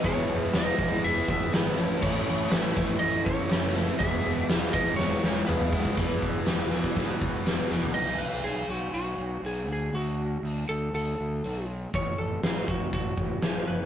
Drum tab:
CC |----------------|x---------------|----------------|----------------|
HH |o---o---o---o---|----o---o---o---|o---o-----------|o-o-o-o-o-o-o---|
SD |----o-------o---|----o-------o---|----o---o-o-----|----o-------o-o-|
T2 |----------------|----------------|------------oo--|----------------|
FT |----------------|----------------|----------------|---------------o|
BD |o-----o---o-----|o-----o---o-----|o-----o-------oo|o-o----oo-o-----|

CC |x---------------|----------------|----------------|
HH |----o---o---o---|o---o---o---o---|o---o---o---o---|
SD |----------------|----------------|----o-------o---|
T2 |----------------|----------------|----------------|
FT |----------------|----------------|----------------|
BD |----------------|----------------|o-----o-o-o-----|